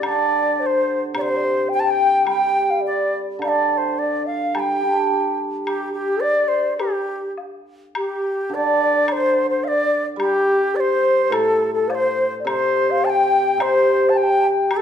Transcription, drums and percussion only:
0.03 high woodblock medium
1.15 high woodblock medium
2.27 high woodblock medium
3.42 high woodblock medium
4.55 high woodblock medium
5.67 high woodblock medium
6.79 high woodblock medium
7.38 low woodblock soft
7.95 high woodblock medium
9.08 high woodblock medium
10.20 high woodblock medium
11.32 high woodblock medium
11.90 low woodblock medium
12.47 high woodblock medium
13.60 high woodblock medium
14.71 high woodblock medium

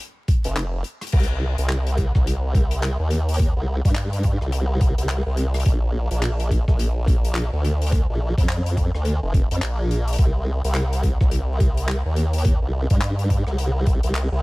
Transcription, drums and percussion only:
0.28 kick loud
0.28 closed hi-hat medium
0.44 closed hi-hat medium
0.56 clap loud
0.56 closed hi-hat medium
0.84 closed hi-hat medium
1.01 cross-stick medium
1.01 closed hi-hat medium
1.07 closed hi-hat medium
1.12 kick loud
1.12 closed hi-hat soft
1.12 crash medium
1.20 closed hi-hat medium
1.23 closed hi-hat medium
1.58 closed hi-hat medium
1.69 clap loud
1.69 closed hi-hat medium
1.87 closed hi-hat medium
1.97 kick medium
1.97 closed hi-hat medium
2.15 kick loud
2.15 cross-stick soft
2.27 closed hi-hat medium
2.55 kick loud
2.55 closed hi-hat medium
2.71 closed hi-hat medium
2.82 clap loud
2.82 closed hi-hat medium
3.11 closed hi-hat medium
3.29 closed hi-hat medium
3.34 closed hi-hat medium
3.39 kick loud
3.39 closed hi-hat medium
3.85 kick loud
3.85 closed hi-hat medium
3.95 clap loud
3.95 closed hi-hat medium
4.13 closed hi-hat medium
4.23 kick medium
4.23 closed hi-hat medium
4.41 cross-stick soft
4.52 closed hi-hat medium
4.81 kick loud
4.81 closed hi-hat medium
4.98 closed hi-hat medium
5.09 clap loud
5.09 closed hi-hat medium
5.37 closed hi-hat medium
5.54 cross-stick medium
5.54 closed hi-hat medium
5.60 closed hi-hat medium
5.66 kick loud
5.66 closed hi-hat medium
6.11 closed hi-hat medium
6.22 clap loud
6.22 closed hi-hat medium
6.40 closed hi-hat medium
6.51 kick medium
6.51 closed hi-hat medium
6.68 kick loud
6.68 cross-stick soft
6.79 closed hi-hat medium
7.07 kick loud
7.07 closed hi-hat soft
7.25 closed hi-hat medium
7.35 clap loud
7.35 closed hi-hat medium
7.64 closed hi-hat medium
7.82 closed hi-hat medium
7.87 closed hi-hat medium
7.92 kick loud
7.92 closed hi-hat medium
8.38 kick loud
8.38 closed hi-hat medium
8.49 clap loud
8.49 closed hi-hat medium
8.66 closed hi-hat medium
8.77 kick medium
8.77 closed hi-hat medium
8.95 cross-stick soft
9.05 closed hi-hat medium
9.34 kick loud
9.34 closed hi-hat medium
9.51 closed hi-hat medium
9.62 clap loud
9.62 closed hi-hat medium
9.91 closed hi-hat medium
10.08 closed hi-hat medium
10.13 closed hi-hat medium
10.18 kick loud
10.18 closed hi-hat medium
10.64 closed hi-hat medium
10.74 clap loud
10.74 closed hi-hat medium
10.93 closed hi-hat medium
11.03 kick medium
11.03 closed hi-hat medium
11.21 kick loud
11.21 cross-stick soft
11.31 closed hi-hat medium
11.60 kick loud
11.60 closed hi-hat medium
11.77 closed hi-hat medium
11.88 clap loud
11.88 closed hi-hat medium
12.16 closed hi-hat medium
12.33 closed hi-hat medium
12.38 closed hi-hat medium
12.45 kick loud
12.45 closed hi-hat medium
12.90 kick loud
12.90 closed hi-hat medium
13.01 clap loud
13.01 closed hi-hat medium
13.19 closed hi-hat medium
13.30 kick medium
13.30 closed hi-hat medium
13.47 cross-stick soft
13.58 closed hi-hat medium
13.86 kick loud
13.86 closed hi-hat soft
14.03 closed hi-hat medium
14.15 clap loud
14.15 closed hi-hat medium

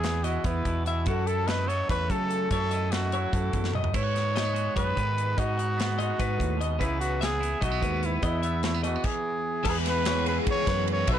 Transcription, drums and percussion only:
0.04 snare medium
0.04 closed hi-hat medium
0.24 closed hi-hat medium
0.44 kick loud
0.44 closed hi-hat medium
0.65 kick medium
0.65 closed hi-hat soft
0.86 closed hi-hat medium
1.06 kick medium
1.06 closed hi-hat medium
1.27 closed hi-hat medium
1.48 snare loud
1.48 closed hi-hat medium
1.70 closed hi-hat medium
1.89 kick medium
1.89 closed hi-hat medium
2.10 kick medium
2.10 closed hi-hat medium
2.31 closed hi-hat medium
2.51 kick medium
2.51 closed hi-hat medium
2.71 closed hi-hat medium
2.92 snare medium
2.92 closed hi-hat medium
3.12 closed hi-hat medium
3.33 kick loud
3.33 closed hi-hat medium
3.53 kick medium
3.53 closed hi-hat medium
3.64 snare soft
3.74 mid tom medium
3.84 floor tom medium
3.94 kick medium
3.94 closed hi-hat medium
3.94 crash medium
4.16 snare soft
4.16 closed hi-hat medium
4.36 snare loud
4.36 closed hi-hat medium
4.56 closed hi-hat medium
4.77 kick loud
4.77 closed hi-hat medium
4.97 kick medium
4.97 closed hi-hat medium
5.18 closed hi-hat medium
5.38 kick loud
5.38 closed hi-hat medium
5.59 closed hi-hat medium
5.80 snare loud
5.80 closed hi-hat medium
6.00 closed hi-hat medium
6.20 kick loud
6.20 closed hi-hat medium
6.40 kick medium
6.40 closed hi-hat medium
6.61 closed hi-hat medium
6.81 kick loud
6.81 closed hi-hat medium
7.01 closed hi-hat medium
7.22 snare loud
7.22 closed hi-hat medium
7.43 closed hi-hat medium
7.62 kick loud
7.62 closed hi-hat medium
7.83 kick medium
7.83 closed hi-hat medium
8.03 closed hi-hat medium
8.23 kick loud
8.23 closed hi-hat medium
8.43 closed hi-hat medium
8.63 snare loud
8.63 closed hi-hat medium
8.84 closed hi-hat medium
9.04 kick medium
9.04 crash medium
9.65 kick loud
9.65 crash loud
9.86 snare soft
9.86 ride medium
10.05 snare loud
10.05 ride loud
10.26 ride medium
10.47 kick loud
10.47 ride loud
10.67 kick medium
10.67 snare soft
10.67 ride medium
10.88 ride medium
11.07 kick loud
11.07 ride loud

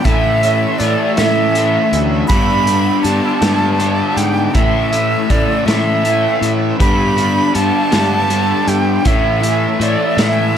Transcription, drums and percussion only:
0.05 kick loud
0.05 closed hi-hat medium
0.43 closed hi-hat medium
0.80 closed hi-hat medium
1.17 snare medium
1.17 closed hi-hat medium
1.55 closed hi-hat medium
1.93 closed hi-hat medium
2.29 kick loud
2.29 closed hi-hat medium
2.67 closed hi-hat medium
3.04 closed hi-hat medium
3.42 snare loud
3.42 closed hi-hat medium
3.80 closed hi-hat medium
4.17 closed hi-hat medium
4.55 kick loud
4.55 closed hi-hat medium
4.93 closed hi-hat medium
5.30 kick medium
5.30 closed hi-hat medium
5.68 snare medium
5.68 closed hi-hat medium
6.05 closed hi-hat medium
6.43 closed hi-hat medium
6.80 kick loud
6.80 closed hi-hat medium
7.18 closed hi-hat medium
7.55 closed hi-hat medium
7.92 snare medium
7.92 closed hi-hat medium
8.30 closed hi-hat medium
8.68 closed hi-hat medium
9.05 kick loud
9.05 closed hi-hat medium
9.43 closed hi-hat medium
9.81 closed hi-hat medium
10.18 snare medium
10.18 closed hi-hat medium

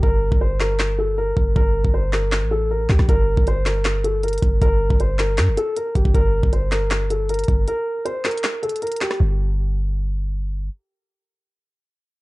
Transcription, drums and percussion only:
0.03 kick loud
0.32 kick loud
0.60 snare loud
0.60 clap medium
0.79 snare loud
0.79 clap loud
1.37 kick medium
1.56 kick loud
1.85 kick medium
2.13 cross-stick medium
2.13 snare loud
2.13 clap medium
2.32 snare loud
2.32 clap loud
2.90 kick medium
2.90 cross-stick medium
2.90 snare medium
2.90 clap medium
2.99 kick medium
2.99 cross-stick loud
2.99 snare medium
3.09 kick loud
3.09 closed hi-hat medium
3.37 kick loud
3.47 closed hi-hat medium
3.66 snare loud
3.66 clap medium
3.66 closed hi-hat medium
3.85 snare loud
3.85 clap loud
3.85 closed hi-hat medium
4.04 closed hi-hat medium
4.23 closed hi-hat medium
4.28 closed hi-hat medium
4.33 closed hi-hat medium
4.38 closed hi-hat medium
4.42 kick medium
4.42 closed hi-hat medium
4.62 kick loud
4.62 closed hi-hat medium
4.90 kick medium
5.00 closed hi-hat medium
5.19 cross-stick medium
5.19 snare loud
5.19 clap medium
5.19 closed hi-hat medium
5.38 snare loud
5.38 clap loud
5.38 closed hi-hat medium
5.57 closed hi-hat medium
5.76 closed hi-hat medium
5.95 kick medium
5.95 closed hi-hat medium
6.05 kick loud
6.15 kick loud
6.15 closed hi-hat medium
6.43 kick loud
6.53 closed hi-hat medium
6.72 snare loud
6.72 clap medium
6.72 closed hi-hat medium
6.91 snare loud
6.91 clap loud
6.91 closed hi-hat medium
7.10 closed hi-hat medium
7.29 closed hi-hat medium
7.34 closed hi-hat medium
7.39 closed hi-hat medium
7.44 closed hi-hat medium
7.48 kick medium
7.48 closed hi-hat medium
7.68 closed hi-hat medium
8.06 closed hi-hat medium
8.25 cross-stick medium
8.25 snare loud
8.25 clap medium
8.25 closed hi-hat soft
8.31 closed hi-hat medium
8.38 closed hi-hat medium
8.44 snare loud
8.44 clap loud
8.44 closed hi-hat medium
8.63 closed hi-hat soft
8.69 closed hi-hat medium
8.76 closed hi-hat medium
8.82 closed hi-hat soft
8.87 closed hi-hat medium
8.92 closed hi-hat medium
8.96 closed hi-hat medium
9.01 cross-stick medium
9.01 snare medium
9.01 clap medium
9.01 closed hi-hat medium
9.11 cross-stick loud
9.11 snare medium

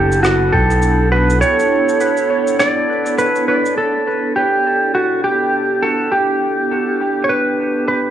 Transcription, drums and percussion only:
0.12 cabasa medium
0.24 cross-stick medium
0.24 cabasa medium
0.54 kick loud
0.71 cabasa medium
0.82 cabasa medium
1.30 cabasa medium
1.42 cabasa medium
1.60 cabasa medium
1.89 cabasa medium
2.01 cabasa medium
2.17 cabasa medium
2.47 cabasa medium
2.60 cross-stick medium
2.60 cabasa medium
3.06 cabasa medium
3.19 cabasa medium
3.35 cabasa soft
3.66 cabasa medium

